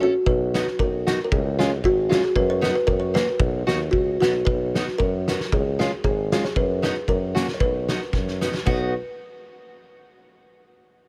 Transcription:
0.00 C#4 E4 F#4 A4
0.26 B1 B4, kick
0.54 B3 D#4 F#4, snare, hi-hat pedal
0.67 snare
0.79 B1 A#4, kick
1.07 B3 D#4 F#4, snare, hi-hat pedal
1.24 A#4
1.32 C#2 G#4, kick
1.59 G#3 C#4 F4, snare, hi-hat pedal
1.84 G#1 F#4, kick
2.09 G#3 C#4 F4 F#4, snare, hi-hat pedal
2.24 G#4, snare
2.35 F#2 B4, kick
2.50 C#5
2.61 B3 D#4 F#4, snare, hi-hat pedal
2.75 B4
2.87 F#2 A#4, kick
3.00 C#5
3.14 A#3 C#4 F#4 B4, snare, hi-hat pedal
3.40 B1, kick
3.67 D#2 B3 D#4 F#4, snare, hi-hat pedal
3.91 C#2 F#4, kick
4.20 B1 B3 D#4 F#4, snare, hi-hat pedal
4.45 B1 B4, kick
4.75 B3 D#4 F#4, snare, hi-hat pedal
4.88 snare
4.98 F#2 A#4, kick
5.28 B3 D#4 F#4, snare, hi-hat pedal
5.40 snare
5.52 C#2 G#4, kick
5.79 G#3 C#4 F4, snare, hi-hat pedal
6.04 G#1 G#4, kick
6.32 G#3 C#4 F4 G#4, snare, hi-hat pedal
6.44 C#5, snare
6.56 F#2 B4, kick
6.82 B3 D#4 F#4, snare, hi-hat pedal
7.08 F#2 A#4, kick
7.35 A#3 C#4 F#4, snare, hi-hat pedal
7.48 snare
7.54 C#5
7.60 B1 B4, kick
7.88 B3 D#4 F#4, snare, hi-hat pedal
8.01 snare
8.13 F#2, kick, snare
8.28 snare
8.41 B3 D#4 F#4, snare, hi-hat pedal
8.54 snare
8.66 B1 B3 D#4 F#4 B4, kick, crash

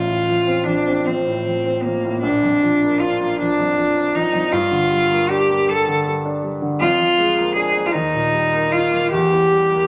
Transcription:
Already playing: A1 F4
0.08 A2
0.28 F3
0.47 C4
0.64 F3 D4
0.87 C4
1.05 F3 C4
1.27 A2
1.46 F3
1.66 C4
1.83 F3 A#3
2.04 A2
2.21 A#1 D4
2.43 F2
2.63 F3
2.82 A#3
3.00 D4 F4
3.20 A#3
3.39 F3 D4
3.59 F2
3.78 F3
3.96 D4
4.15 F3 D#4
4.34 F2
4.52 G2 F4
4.71 D3
4.90 G3
5.10 A#3
5.30 D4 G4
5.49 A#3
5.68 G3 A4
5.87 D3
6.07 G3
6.25 D4
6.43 G3
6.62 D3
6.80 F2 F4
6.99 F3
7.18 G#3
7.38 A#3
7.55 D4 G#4
7.76 A#3
7.86 F4
7.92 D#2 D#4
8.14 A#2
8.32 G3
8.53 A#3
8.72 D#4 F4
8.92 A#3
9.11 E2 G4
9.33 E3
9.52 G3
9.72 A#3

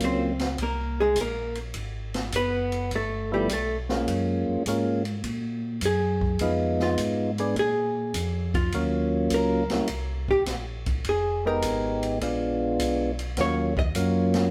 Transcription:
Already playing: F#3 A#3 C#4 F4
0.00 C#2 C4, kick, hi-hat pedal, ride
0.05 C5
0.39 snare, ride
0.58 C2, kick, ride
0.62 A#3 A#4
1.00 G#3 G#4
1.16 A#1, kick, hi-hat pedal, ride
1.21 A#3 A#4
1.55 ride
1.74 G#1, kick, ride
2.14 snare, ride
2.32 F#1 B4, kick, hi-hat pedal, ride
2.37 B3
2.72 ride
2.91 G1, kick, ride
2.95 A3 A4
3.32 F3 G3 A3 B3 E4 G4
3.49 B1 A4, kick, hi-hat pedal, ride
3.54 A3
3.89 G#3 A#3 C#4 F4, snare
4.08 F#2, kick, ride
4.48 F#2
4.66 G#2 G#3 A#3 C#4 F4, kick, hi-hat pedal, ride
5.05 ride
5.24 A#2, kick, ride
5.81 F#2, kick, hi-hat pedal, ride
5.85 G#4
6.21 kick
6.39 F2 G#3 B3 D#4 F4, kick, ride
6.80 F4, snare
6.98 G#2, kick, hi-hat pedal, ride
7.38 G#3 B3 D4 G#4, ride
7.56 A#2 G#4, kick, ride
8.14 F2, kick, hi-hat pedal, ride
8.54 F4, kick, ride
8.72 D#2 F#3 A#3 C#4 F4, kick, ride
9.30 C#2, kick, hi-hat pedal, ride
9.34 A#4
9.70 C#2 G3 A#3 C#4 E4, snare, ride
9.87 C2, kick, ride
10.28 G4, kick
10.46 A#1, kick, snare, hi-hat pedal, ride
10.86 kick, ride
11.04 F1, kick, ride
11.09 G#4
11.45 G#3 B3 D#4 G4 A#4
11.62 G#1, kick, hi-hat pedal, ride
12.03 ride
12.21 A#1 G#3 B3 D4 F4, kick, ride
12.79 B1, kick, hi-hat pedal, ride
13.19 ride
13.37 D#2 F#3 A#3 C#4 F4 C#5, kick, snare, ride
13.77 D#5, kick
13.95 F#2 F#3 A#3 C#4 F4, kick, hi-hat pedal, ride
14.34 snare, ride

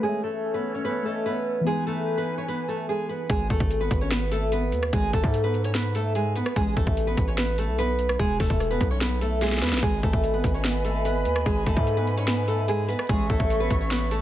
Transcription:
Already playing: A3
0.01 E3 G#3 C#4 G#4 A4 C#5
0.09 E5
0.24 A3 A4
0.54 B3 B4
0.75 C#4 C#5
0.85 B3 B4
1.02 A3 A4 C#5
1.08 D#5
1.26 B3 B4
1.61 E3 B3
1.66 E3 G#3 D#4 G#4 B4 G#5
1.72 B4
1.87 A3 A4
2.18 B3 B4
2.38 C#4 C#5
2.48 B3 B4
2.68 A3 A4
2.89 G#3 G#4
3.09 B3 B4
3.29 G#1 G#3 G#4, kick, closed hi-hat
3.50 G#1 A3 A4, kick
3.60 G#1, kick
3.71 closed hi-hat
3.81 B3 B4
3.91 G#1, kick, closed hi-hat
4.01 C#4 C#5
4.11 B3 B4, snare, closed hi-hat
4.32 A3 A4, closed hi-hat
4.52 B3 B4, closed hi-hat
4.72 D#2, closed hi-hat
4.83 cross-stick
4.93 G#1 G#3 G#4, kick, closed hi-hat
5.13 G#1 A3 A4, kick, closed hi-hat
5.24 G#2, kick
5.34 closed hi-hat
5.44 B3 B4
5.54 closed hi-hat
5.64 C#4 C#5, closed hi-hat
5.74 B3 B4, snare, closed hi-hat
5.95 A3 A4, closed hi-hat
6.15 G#3 G#4, closed hi-hat
6.36 B3 B4, closed hi-hat
6.46 cross-stick
6.56 A1 G#3 G#4, kick, closed hi-hat
6.77 A1 A3 A4, kick
6.87 A1, kick
6.97 closed hi-hat
7.07 B3 B4
7.17 A1, kick, closed hi-hat
7.28 C#4 C#5
7.38 B3 B4, snare, closed hi-hat
7.58 A3 A4, closed hi-hat
7.68 B1
7.78 B3 B4, closed hi-hat
7.99 closed hi-hat
8.09 cross-stick
8.19 E1 G#3 G#4, kick, closed hi-hat
8.40 E1 A3 A4, kick, open hi-hat
8.50 E1, kick
8.60 cross-stick, closed hi-hat
8.71 B3 B4
8.81 B1, kick, closed hi-hat
8.91 C#4 C#5
9.01 B3 B4, snare, closed hi-hat
9.21 A3 A4, closed hi-hat
9.42 G#3 G#4, snare, closed hi-hat
9.47 snare
9.52 snare
9.57 snare
9.62 E2 B3 B4, snare, closed hi-hat
9.67 snare
9.72 B1, snare
9.78 snare
9.83 G#1 G#3 G#4 B4 D#5 G#5 B5, kick, closed hi-hat
10.03 G#1 A3 A4, kick
10.13 G#1, kick
10.24 closed hi-hat
10.34 B3 B4
10.44 G#1, kick, closed hi-hat
10.54 C#4 C#5
10.64 B3 B4, snare, closed hi-hat
10.85 A3 A4, closed hi-hat
11.05 B3 B4, closed hi-hat
11.25 D#2, closed hi-hat
11.36 cross-stick
11.46 G#1 G#3 G#4, kick, closed hi-hat
11.66 G#1 A3 A4, kick, closed hi-hat
11.77 G#2, kick
11.87 closed hi-hat
11.97 B3 B4
12.07 closed hi-hat
12.17 C#4 C#5, closed hi-hat
12.27 B3 B4, snare, closed hi-hat
12.48 A3 A4, closed hi-hat
12.68 G#3 G#4, closed hi-hat
12.89 B3 B4, closed hi-hat
12.99 cross-stick
13.09 A1 G#3 G#4 A4 C#5 E5 C#6, kick, closed hi-hat
13.30 A1 A3 A4, kick
13.40 A1, kick
13.50 closed hi-hat
13.60 B3 B4
13.70 A1, kick, closed hi-hat
13.81 C#4 C#5
13.91 B3 B4, snare, closed hi-hat
14.11 A3 A4, closed hi-hat

